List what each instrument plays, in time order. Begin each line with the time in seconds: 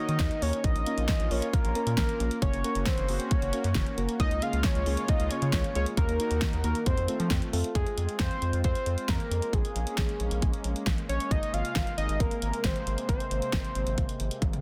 Already playing: analog synth pad D#3 D#4 F#4 A#4, synth keys A#3 D#4 F#4 C#5, analog synth lead D#5
0.09 analog synth bass D#3, closed hi-hat
0.19 analog synth bass D#2, kick, snare, closed hi-hat
0.31 closed hi-hat
0.42 analog synth bass D#2, synth keys A#3 D#4 F#4 A#4, analog synth lead C#5, open hi-hat
0.53 closed hi-hat
0.64 analog synth bass A#1, analog synth pad A#3 C#4 F4, analog synth lead D#5, kick, closed hi-hat
0.75 analog synth bass A#1, closed hi-hat
0.86 synth keys A#3 C#4 F4 A#4, closed hi-hat
0.98 analog synth bass A#1, closed hi-hat
1.08 kick, snare, closed hi-hat
1.20 analog synth bass A#1, closed hi-hat
1.31 analog synth bass A#1, synth keys A#3 C#4 F4 A#4, analog synth lead C#5, open hi-hat
1.42 closed hi-hat
1.53 analog synth lead A#4, kick, closed hi-hat
1.64 analog synth bass A#1, closed hi-hat
1.75 synth keys A#3 C#4 F4 A#4, closed hi-hat
1.86 analog synth bass A#2, closed hi-hat
1.98 analog synth bass A#1, analog synth lead A#4, kick, snare, closed hi-hat
2.09 closed hi-hat
2.20 analog synth bass A#1, synth keys A#3 C#4 F4 A#4, closed hi-hat
2.31 closed hi-hat
2.42 analog synth bass F#1, analog synth pad C#4 F#4, analog synth lead C#5, kick, closed hi-hat
2.53 analog synth bass F#1, closed hi-hat
2.64 synth keys A#3 C#4 F#4 A#4, closed hi-hat
2.75 analog synth bass F#1, closed hi-hat
2.86 analog synth lead C5, kick, snare, closed hi-hat
2.98 analog synth bass F#1, closed hi-hat
3.09 analog synth bass F#1, synth keys A#3 C#4 F#4 G#4, open hi-hat
3.20 closed hi-hat
3.31 analog synth lead C#5, kick, closed hi-hat
3.42 analog synth bass F#1, closed hi-hat
3.53 synth keys A#3 C#4 F#4 A#4, closed hi-hat
3.64 analog synth bass F#2, closed hi-hat
3.75 analog synth bass F#1, kick, snare, closed hi-hat
3.87 closed hi-hat
3.97 analog synth bass F#1, synth keys A#3 C#4 F#4 A#4, closed hi-hat
4.09 closed hi-hat
4.20 analog synth bass C#2, analog synth pad C#3 G#3 F4, analog synth lead D#5, kick, closed hi-hat
4.31 analog synth bass C#2, closed hi-hat
4.42 synth keys A#3 C#4 F4 G#4, analog synth lead F5, closed hi-hat
4.53 analog synth bass C#2, closed hi-hat
4.64 analog synth lead C#5, kick, snare, closed hi-hat
4.75 analog synth bass C#2, closed hi-hat
4.86 analog synth bass C#2, synth keys A#3 C#4 F4 G#4, open hi-hat
4.97 closed hi-hat
5.08 analog synth lead D#5, kick, closed hi-hat
5.20 analog synth bass C#2, closed hi-hat
5.31 synth keys A#3 C#4 F4 G#4, analog synth lead C#5, closed hi-hat
5.42 analog synth bass C#3, closed hi-hat
5.53 analog synth bass C#2, kick, snare, closed hi-hat
5.64 closed hi-hat
5.75 analog synth bass C#2, synth keys A#3 C#4 F4 G#4, analog synth lead C#5, closed hi-hat
5.86 closed hi-hat
5.97 analog synth bass D#2, analog synth pad D#3 D#4 F#4 A#4, analog synth lead A#4, kick, closed hi-hat
6.09 analog synth bass D#2, closed hi-hat
6.20 synth keys A#3 D#4 F#4 A#4, closed hi-hat
6.31 analog synth bass D#2, closed hi-hat
6.42 kick, snare, closed hi-hat
6.53 analog synth bass D#2, closed hi-hat
6.64 analog synth bass D#2, synth keys A#3 D#4 F#4 A#4, analog synth lead A#4, closed hi-hat
6.75 closed hi-hat
6.86 analog synth bass F2, analog synth pad A3 C4 F4, analog synth lead C5, kick, closed hi-hat
6.97 analog synth bass F2, closed hi-hat
7.08 synth keys A3 C4 F4 A4, closed hi-hat
7.20 analog synth bass F3, closed hi-hat
7.31 analog synth bass F2, kick, snare, closed hi-hat
7.42 closed hi-hat
7.53 analog synth bass F2, synth keys A3 C4 F4 A4, open hi-hat
7.64 closed hi-hat
7.75 analog synth bass F2, analog synth pad G#3 C4 F4, analog synth lead G#4, kick, closed hi-hat
7.87 closed hi-hat
7.97 analog synth bass F2, closed hi-hat
8.09 closed hi-hat
8.19 analog synth bass F2, analog synth lead C5, kick, snare, closed hi-hat
8.31 closed hi-hat
8.42 analog synth bass F2, closed hi-hat
8.53 analog synth bass F2, closed hi-hat
8.64 analog synth bass F2, analog synth lead C5, kick, closed hi-hat
8.75 closed hi-hat
8.86 analog synth bass F2, closed hi-hat
8.98 closed hi-hat
9.09 analog synth bass F2, analog synth lead A#4, kick, snare, closed hi-hat
9.20 closed hi-hat
9.31 analog synth bass F2, closed hi-hat
9.42 closed hi-hat
9.53 analog synth bass A#1, analog synth pad A#3 C#4, analog synth lead G#4, kick, closed hi-hat
9.65 closed hi-hat
9.75 analog synth bass A#1, closed hi-hat
9.87 closed hi-hat
9.98 analog synth bass A#1, kick, snare, closed hi-hat
10.09 closed hi-hat
10.20 analog synth bass A#1, closed hi-hat
10.31 analog synth bass A#1, closed hi-hat
10.42 analog synth bass A#1, kick, closed hi-hat
10.54 closed hi-hat
10.64 analog synth bass A#1, closed hi-hat
10.76 closed hi-hat
10.87 analog synth bass A#1, kick, snare, closed hi-hat
10.98 closed hi-hat
11.09 analog synth bass A#1, analog synth lead C#5, closed hi-hat
11.20 closed hi-hat
11.31 analog synth bass G#1, analog synth pad C3 A#3, analog synth lead D#5, kick, closed hi-hat
11.43 closed hi-hat
11.53 analog synth bass G#1, analog synth lead F5, closed hi-hat
11.65 closed hi-hat
11.76 analog synth bass G#1, kick, snare, closed hi-hat
11.87 closed hi-hat
11.98 analog synth bass G#1, analog synth lead D#5, closed hi-hat
12.09 analog synth bass G#1, closed hi-hat
12.20 analog synth bass G#1, analog synth lead A#4, kick, closed hi-hat
12.31 closed hi-hat
12.42 analog synth bass G#1, closed hi-hat
12.54 closed hi-hat
12.64 analog synth bass G#1, analog synth lead C5, kick, snare, closed hi-hat
12.76 closed hi-hat
12.87 analog synth bass G#1, closed hi-hat
12.98 closed hi-hat
13.09 analog synth bass G#1, analog synth lead C5, kick, closed hi-hat
13.20 closed hi-hat
13.31 analog synth bass G#1, closed hi-hat
13.42 closed hi-hat
13.53 analog synth bass G#1, kick, snare, closed hi-hat
13.65 closed hi-hat
13.75 analog synth bass G#1, closed hi-hat
13.87 analog synth bass G#1, closed hi-hat
13.98 analog synth bass G#1, kick, closed hi-hat
14.09 closed hi-hat
14.20 analog synth bass G#1, closed hi-hat
14.31 closed hi-hat
14.42 analog synth bass G#1, kick, closed hi-hat, high tom
14.53 closed hi-hat, mid tom